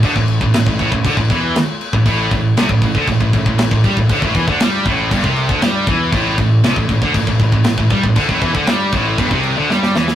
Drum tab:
CC |x-x-x-x-x-x-x-x-|x-x-x-x-x-x-x-x-|x-x-x-x-x-x-x-x-|x-x-x-x-x-x-x-x-|
SD |----o-------o---|----o-------o---|----o-------o---|----o-------o---|
BD |oo-o-oooooo----o|o-o--ooooooo-ooo|oooo--o-oo-o--o-|o-o--ooooooo-ooo|

CC |x-x-x-x-x-x-----|
SD |----o-------oooo|
BD |oooo--o-oo------|